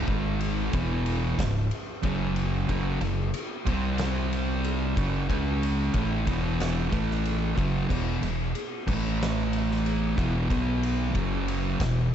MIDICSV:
0, 0, Header, 1, 4, 480
1, 0, Start_track
1, 0, Tempo, 651466
1, 57, Time_signature, 4, 2, 24, 8
1, 8951, End_track
2, 0, Start_track
2, 0, Title_t, "Distorted electric guitar"
2, 0, Program_c, 0, 30
2, 57, Note_on_c, 0, 44, 84
2, 61, Note_on_c, 0, 51, 99
2, 66, Note_on_c, 0, 56, 107
2, 530, Note_off_c, 0, 44, 0
2, 533, Note_off_c, 0, 51, 0
2, 533, Note_on_c, 0, 40, 88
2, 535, Note_off_c, 0, 56, 0
2, 539, Note_on_c, 0, 47, 99
2, 544, Note_on_c, 0, 52, 104
2, 1009, Note_off_c, 0, 40, 0
2, 1012, Note_off_c, 0, 47, 0
2, 1015, Note_off_c, 0, 52, 0
2, 1024, Note_on_c, 0, 37, 66
2, 1025, Note_on_c, 0, 44, 80
2, 1214, Note_off_c, 0, 37, 0
2, 1214, Note_off_c, 0, 44, 0
2, 1504, Note_on_c, 0, 42, 96
2, 1508, Note_on_c, 0, 49, 110
2, 1513, Note_on_c, 0, 54, 108
2, 1975, Note_off_c, 0, 42, 0
2, 1977, Note_off_c, 0, 49, 0
2, 1980, Note_off_c, 0, 54, 0
2, 1990, Note_on_c, 0, 42, 92
2, 1998, Note_on_c, 0, 49, 96
2, 1999, Note_on_c, 0, 54, 110
2, 2218, Note_off_c, 0, 42, 0
2, 2222, Note_off_c, 0, 49, 0
2, 2223, Note_off_c, 0, 54, 0
2, 2228, Note_on_c, 0, 42, 67
2, 2233, Note_on_c, 0, 49, 78
2, 2416, Note_off_c, 0, 42, 0
2, 2419, Note_off_c, 0, 49, 0
2, 2709, Note_on_c, 0, 48, 100
2, 2713, Note_on_c, 0, 55, 99
2, 2715, Note_on_c, 0, 60, 101
2, 3654, Note_off_c, 0, 48, 0
2, 3654, Note_on_c, 0, 42, 94
2, 3657, Note_off_c, 0, 55, 0
2, 3657, Note_on_c, 0, 49, 109
2, 3660, Note_on_c, 0, 54, 107
2, 3661, Note_off_c, 0, 60, 0
2, 3889, Note_off_c, 0, 49, 0
2, 3890, Note_off_c, 0, 42, 0
2, 3893, Note_off_c, 0, 54, 0
2, 3898, Note_on_c, 0, 49, 86
2, 3900, Note_on_c, 0, 61, 103
2, 3901, Note_on_c, 0, 56, 89
2, 4372, Note_off_c, 0, 49, 0
2, 4373, Note_off_c, 0, 56, 0
2, 4373, Note_off_c, 0, 61, 0
2, 4376, Note_on_c, 0, 45, 93
2, 4381, Note_on_c, 0, 52, 93
2, 4383, Note_on_c, 0, 57, 99
2, 4611, Note_off_c, 0, 45, 0
2, 4613, Note_off_c, 0, 52, 0
2, 4614, Note_off_c, 0, 57, 0
2, 4616, Note_on_c, 0, 40, 91
2, 4622, Note_on_c, 0, 47, 100
2, 4623, Note_on_c, 0, 52, 111
2, 5083, Note_off_c, 0, 52, 0
2, 5088, Note_off_c, 0, 40, 0
2, 5089, Note_off_c, 0, 47, 0
2, 5091, Note_on_c, 0, 45, 96
2, 5092, Note_on_c, 0, 52, 93
2, 5097, Note_on_c, 0, 57, 103
2, 5568, Note_off_c, 0, 45, 0
2, 5568, Note_off_c, 0, 52, 0
2, 5571, Note_off_c, 0, 57, 0
2, 5579, Note_on_c, 0, 42, 101
2, 5580, Note_on_c, 0, 49, 100
2, 5580, Note_on_c, 0, 54, 100
2, 5812, Note_off_c, 0, 42, 0
2, 5812, Note_off_c, 0, 49, 0
2, 5812, Note_off_c, 0, 54, 0
2, 5816, Note_on_c, 0, 40, 90
2, 5818, Note_on_c, 0, 47, 86
2, 5823, Note_on_c, 0, 52, 99
2, 6046, Note_off_c, 0, 40, 0
2, 6051, Note_off_c, 0, 47, 0
2, 6053, Note_off_c, 0, 52, 0
2, 6055, Note_on_c, 0, 40, 62
2, 6062, Note_on_c, 0, 47, 73
2, 6249, Note_off_c, 0, 40, 0
2, 6252, Note_off_c, 0, 47, 0
2, 6536, Note_on_c, 0, 45, 90
2, 6539, Note_on_c, 0, 57, 102
2, 6540, Note_on_c, 0, 52, 96
2, 7487, Note_off_c, 0, 45, 0
2, 7488, Note_off_c, 0, 52, 0
2, 7489, Note_on_c, 0, 40, 83
2, 7490, Note_off_c, 0, 57, 0
2, 7493, Note_on_c, 0, 47, 87
2, 7497, Note_on_c, 0, 52, 100
2, 7715, Note_off_c, 0, 47, 0
2, 7721, Note_off_c, 0, 40, 0
2, 7724, Note_on_c, 0, 47, 83
2, 7729, Note_off_c, 0, 52, 0
2, 7731, Note_on_c, 0, 54, 99
2, 7735, Note_on_c, 0, 59, 106
2, 8204, Note_off_c, 0, 47, 0
2, 8204, Note_off_c, 0, 54, 0
2, 8204, Note_on_c, 0, 42, 100
2, 8204, Note_on_c, 0, 49, 100
2, 8209, Note_off_c, 0, 59, 0
2, 8209, Note_on_c, 0, 54, 103
2, 8681, Note_off_c, 0, 42, 0
2, 8681, Note_off_c, 0, 49, 0
2, 8684, Note_off_c, 0, 54, 0
2, 8700, Note_on_c, 0, 40, 71
2, 8701, Note_on_c, 0, 47, 83
2, 8889, Note_off_c, 0, 40, 0
2, 8889, Note_off_c, 0, 47, 0
2, 8951, End_track
3, 0, Start_track
3, 0, Title_t, "Fingered electric bass"
3, 0, Program_c, 1, 33
3, 58, Note_on_c, 1, 32, 100
3, 509, Note_off_c, 1, 32, 0
3, 538, Note_on_c, 1, 28, 93
3, 990, Note_off_c, 1, 28, 0
3, 1020, Note_on_c, 1, 25, 76
3, 1243, Note_off_c, 1, 25, 0
3, 1502, Note_on_c, 1, 30, 94
3, 1952, Note_off_c, 1, 30, 0
3, 1983, Note_on_c, 1, 30, 92
3, 2205, Note_off_c, 1, 30, 0
3, 2219, Note_on_c, 1, 30, 86
3, 2443, Note_off_c, 1, 30, 0
3, 2702, Note_on_c, 1, 36, 95
3, 3632, Note_off_c, 1, 36, 0
3, 3661, Note_on_c, 1, 30, 104
3, 3884, Note_off_c, 1, 30, 0
3, 3902, Note_on_c, 1, 37, 93
3, 4352, Note_off_c, 1, 37, 0
3, 4377, Note_on_c, 1, 33, 89
3, 4602, Note_off_c, 1, 33, 0
3, 4620, Note_on_c, 1, 28, 94
3, 5070, Note_off_c, 1, 28, 0
3, 5097, Note_on_c, 1, 33, 97
3, 5548, Note_off_c, 1, 33, 0
3, 5580, Note_on_c, 1, 30, 108
3, 5802, Note_off_c, 1, 30, 0
3, 5821, Note_on_c, 1, 28, 89
3, 6043, Note_off_c, 1, 28, 0
3, 6056, Note_on_c, 1, 28, 80
3, 6280, Note_off_c, 1, 28, 0
3, 6537, Note_on_c, 1, 33, 97
3, 7466, Note_off_c, 1, 33, 0
3, 7498, Note_on_c, 1, 28, 102
3, 7720, Note_off_c, 1, 28, 0
3, 7737, Note_on_c, 1, 35, 98
3, 8186, Note_off_c, 1, 35, 0
3, 8216, Note_on_c, 1, 30, 100
3, 8665, Note_off_c, 1, 30, 0
3, 8694, Note_on_c, 1, 28, 81
3, 8917, Note_off_c, 1, 28, 0
3, 8951, End_track
4, 0, Start_track
4, 0, Title_t, "Drums"
4, 58, Note_on_c, 9, 36, 99
4, 131, Note_off_c, 9, 36, 0
4, 299, Note_on_c, 9, 51, 78
4, 372, Note_off_c, 9, 51, 0
4, 539, Note_on_c, 9, 51, 105
4, 542, Note_on_c, 9, 36, 111
4, 612, Note_off_c, 9, 51, 0
4, 615, Note_off_c, 9, 36, 0
4, 780, Note_on_c, 9, 51, 74
4, 854, Note_off_c, 9, 51, 0
4, 1022, Note_on_c, 9, 36, 108
4, 1022, Note_on_c, 9, 51, 95
4, 1032, Note_on_c, 9, 38, 118
4, 1096, Note_off_c, 9, 36, 0
4, 1096, Note_off_c, 9, 51, 0
4, 1106, Note_off_c, 9, 38, 0
4, 1260, Note_on_c, 9, 51, 75
4, 1334, Note_off_c, 9, 51, 0
4, 1496, Note_on_c, 9, 51, 98
4, 1502, Note_on_c, 9, 36, 113
4, 1570, Note_off_c, 9, 51, 0
4, 1575, Note_off_c, 9, 36, 0
4, 1738, Note_on_c, 9, 51, 70
4, 1812, Note_off_c, 9, 51, 0
4, 1982, Note_on_c, 9, 51, 85
4, 1983, Note_on_c, 9, 36, 99
4, 2055, Note_off_c, 9, 51, 0
4, 2057, Note_off_c, 9, 36, 0
4, 2218, Note_on_c, 9, 51, 76
4, 2291, Note_off_c, 9, 51, 0
4, 2458, Note_on_c, 9, 51, 108
4, 2532, Note_off_c, 9, 51, 0
4, 2702, Note_on_c, 9, 36, 110
4, 2703, Note_on_c, 9, 51, 81
4, 2776, Note_off_c, 9, 36, 0
4, 2776, Note_off_c, 9, 51, 0
4, 2933, Note_on_c, 9, 51, 101
4, 2944, Note_on_c, 9, 38, 118
4, 3007, Note_off_c, 9, 51, 0
4, 3017, Note_off_c, 9, 38, 0
4, 3188, Note_on_c, 9, 51, 77
4, 3261, Note_off_c, 9, 51, 0
4, 3421, Note_on_c, 9, 51, 104
4, 3495, Note_off_c, 9, 51, 0
4, 3663, Note_on_c, 9, 36, 112
4, 3667, Note_on_c, 9, 51, 82
4, 3736, Note_off_c, 9, 36, 0
4, 3740, Note_off_c, 9, 51, 0
4, 3903, Note_on_c, 9, 36, 95
4, 3907, Note_on_c, 9, 51, 102
4, 3977, Note_off_c, 9, 36, 0
4, 3981, Note_off_c, 9, 51, 0
4, 4149, Note_on_c, 9, 51, 75
4, 4222, Note_off_c, 9, 51, 0
4, 4374, Note_on_c, 9, 51, 104
4, 4380, Note_on_c, 9, 36, 113
4, 4448, Note_off_c, 9, 51, 0
4, 4453, Note_off_c, 9, 36, 0
4, 4621, Note_on_c, 9, 36, 107
4, 4622, Note_on_c, 9, 51, 82
4, 4695, Note_off_c, 9, 36, 0
4, 4696, Note_off_c, 9, 51, 0
4, 4864, Note_on_c, 9, 51, 106
4, 4875, Note_on_c, 9, 38, 116
4, 4938, Note_off_c, 9, 51, 0
4, 4948, Note_off_c, 9, 38, 0
4, 5102, Note_on_c, 9, 36, 100
4, 5103, Note_on_c, 9, 51, 75
4, 5176, Note_off_c, 9, 36, 0
4, 5177, Note_off_c, 9, 51, 0
4, 5238, Note_on_c, 9, 38, 34
4, 5312, Note_off_c, 9, 38, 0
4, 5345, Note_on_c, 9, 51, 90
4, 5419, Note_off_c, 9, 51, 0
4, 5582, Note_on_c, 9, 36, 110
4, 5587, Note_on_c, 9, 51, 73
4, 5656, Note_off_c, 9, 36, 0
4, 5661, Note_off_c, 9, 51, 0
4, 5823, Note_on_c, 9, 36, 94
4, 5826, Note_on_c, 9, 49, 89
4, 5897, Note_off_c, 9, 36, 0
4, 5899, Note_off_c, 9, 49, 0
4, 6062, Note_on_c, 9, 51, 75
4, 6136, Note_off_c, 9, 51, 0
4, 6300, Note_on_c, 9, 51, 95
4, 6373, Note_off_c, 9, 51, 0
4, 6541, Note_on_c, 9, 36, 108
4, 6544, Note_on_c, 9, 49, 102
4, 6615, Note_off_c, 9, 36, 0
4, 6618, Note_off_c, 9, 49, 0
4, 6798, Note_on_c, 9, 38, 120
4, 6872, Note_off_c, 9, 38, 0
4, 7022, Note_on_c, 9, 51, 74
4, 7095, Note_off_c, 9, 51, 0
4, 7157, Note_on_c, 9, 38, 34
4, 7231, Note_off_c, 9, 38, 0
4, 7264, Note_on_c, 9, 51, 98
4, 7338, Note_off_c, 9, 51, 0
4, 7500, Note_on_c, 9, 36, 107
4, 7507, Note_on_c, 9, 51, 73
4, 7573, Note_off_c, 9, 36, 0
4, 7580, Note_off_c, 9, 51, 0
4, 7740, Note_on_c, 9, 36, 97
4, 7744, Note_on_c, 9, 51, 101
4, 7814, Note_off_c, 9, 36, 0
4, 7817, Note_off_c, 9, 51, 0
4, 7982, Note_on_c, 9, 51, 80
4, 8056, Note_off_c, 9, 51, 0
4, 8213, Note_on_c, 9, 51, 106
4, 8217, Note_on_c, 9, 36, 104
4, 8287, Note_off_c, 9, 51, 0
4, 8291, Note_off_c, 9, 36, 0
4, 8461, Note_on_c, 9, 51, 82
4, 8534, Note_off_c, 9, 51, 0
4, 8694, Note_on_c, 9, 51, 108
4, 8696, Note_on_c, 9, 36, 114
4, 8704, Note_on_c, 9, 38, 109
4, 8768, Note_off_c, 9, 51, 0
4, 8769, Note_off_c, 9, 36, 0
4, 8778, Note_off_c, 9, 38, 0
4, 8951, End_track
0, 0, End_of_file